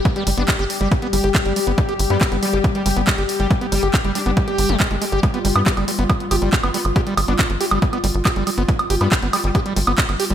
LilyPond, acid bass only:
\new Staff \with { instrumentName = "Acid bass" } { \clef bass \time 4/4 \tempo 4 = 139 r16 g16 g16 b16 g16 g'16 r16 g16 g16 b16 g16 g'16 r16 g16 g16 b16 | g16 g'16 r16 g16 g16 b16 g16 g'16 r16 g16 g16 b16 g16 g'16 r16 g16 | r16 b16 g16 g'16 r16 g16 g16 b16 g16 g'8 g16 aes16 aes16 aes16 g'16 | g16 b16 g16 r16 g'16 g16 g16 b16 g16 r16 g'16 g16 r16 b16 g16 r16 |
g'16 g16 g16 b16 g16 r16 g'16 g16 g16 b16 g16 r16 g'16 g16 g16 b16 | g16 r16 g'16 g16 g16 b16 g16 r16 g'16 g16 g16 b16 g16 r16 g'16 g16 | }